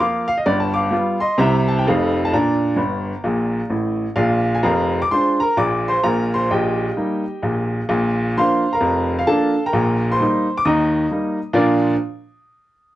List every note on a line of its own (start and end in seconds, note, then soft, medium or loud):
0.00 0.25 F3 soft
0.00 0.25 A#3 soft
0.00 0.25 F4 medium
0.00 0.26 F5 medium
0.00 0.28 D6 medium
0.28 0.36 F5 medium
0.38 0.46 D#5 medium
0.46 0.85 G1 medium
0.46 0.85 G2 medium
0.46 0.60 D5 medium
0.60 0.74 A5 medium
0.74 1.18 F5 medium
0.74 1.20 D6 medium
0.91 1.16 G3 medium
0.91 1.17 B3 soft
0.91 1.18 F4 medium
1.20 1.37 D#5 medium
1.20 1.38 C6 medium
1.38 1.78 C2 medium
1.38 1.77 C3 medium
1.38 1.64 G3 soft
1.38 1.64 C4 soft
1.38 1.65 E4 soft
1.38 1.66 E5 medium
1.38 1.67 A#5 medium
1.68 1.76 A5 medium
1.78 1.86 G5 medium
1.87 2.25 F1 medium
1.87 2.26 F2 medium
1.87 2.12 A3 soft
1.87 2.13 D#4 soft
1.87 2.13 F4 soft
1.87 2.21 A4 medium
1.87 2.24 F5 medium
2.25 2.32 A5 medium
2.33 2.69 A#2 medium
2.33 2.70 D4 medium
2.33 3.68 D5 medium
2.33 3.72 A#5 medium
2.76 3.12 G1 medium
2.76 3.12 G2 medium
3.24 3.59 A#1 medium
3.24 3.59 A#2 medium
3.70 4.05 A1 medium
3.70 4.05 A2 medium
4.16 4.53 A#1 medium
4.16 4.54 A#2 medium
4.16 4.52 F4 medium
4.16 4.51 D5 medium
4.16 4.54 F5 medium
4.55 4.63 G#5 medium
4.63 5.00 F1 medium
4.63 5.00 F2 medium
4.63 4.99 A#4 medium
4.63 4.99 F5 medium
4.63 5.01 A#5 medium
5.02 5.10 D6 medium
5.11 5.37 G#3 soft
5.11 5.37 D4 soft
5.11 5.37 F4 soft
5.11 5.39 C5 medium
5.11 5.39 C6 medium
5.40 5.57 A#4 medium
5.40 5.57 A#5 medium
5.57 5.94 A#1 medium
5.57 5.94 A#2 medium
5.57 5.84 D5 medium
5.57 5.86 D6 medium
5.88 6.03 C5 medium
5.88 6.04 C6 medium
6.03 6.40 A#1 medium
6.03 6.40 A#2 medium
6.03 6.31 A#4 medium
6.03 6.32 A#5 medium
6.34 6.50 C5 medium
6.34 6.50 C6 medium
6.51 6.87 A#1 medium
6.51 6.87 A#2 medium
6.51 7.86 G4 medium
6.51 7.86 D#5 medium
6.51 7.89 G5 medium
6.97 7.23 G3 soft
6.97 7.22 A#3 soft
6.97 7.22 D#4 soft
7.42 7.79 A#1 medium
7.42 7.80 A#2 medium
7.89 8.28 A#1 medium
7.89 8.28 A#2 medium
8.37 8.62 F3 soft
8.37 8.63 A#3 medium
8.37 8.63 D4 soft
8.37 8.71 C5 medium
8.37 8.72 F5 medium
8.37 8.74 C6 medium
8.73 9.16 A#4 medium
8.73 9.17 F5 medium
8.73 9.19 A#5 medium
8.81 9.20 F1 medium
8.81 9.20 F2 medium
9.19 9.26 F5 medium
9.27 9.53 F3 soft
9.27 9.52 A#3 medium
9.27 9.53 D4 medium
9.27 9.62 A4 medium
9.27 9.62 F5 medium
9.27 9.65 A5 medium
9.66 10.09 A#4 medium
9.66 10.09 G5 soft
9.66 10.12 A#5 medium
9.73 10.13 A#1 medium
9.73 10.13 A#2 medium
10.12 10.55 C5 medium
10.12 10.58 C6 medium
10.21 10.46 G3 soft
10.21 10.46 A#3 soft
10.21 10.46 D#4 medium
10.58 10.66 D6 medium
10.65 11.05 D#2 medium
10.65 11.05 D#3 medium
10.65 11.37 D#5 medium
10.65 11.38 A#5 medium
10.65 11.41 D#6 medium
11.11 11.37 G3 soft
11.11 11.37 A#3 soft
11.11 11.38 D#4 soft
11.53 11.86 A#2 medium
11.53 11.86 F3 medium
11.53 11.86 D4 medium
11.53 11.86 F4 medium
11.53 11.86 A#4 medium
11.53 11.87 D5 medium
11.53 11.87 D6 soft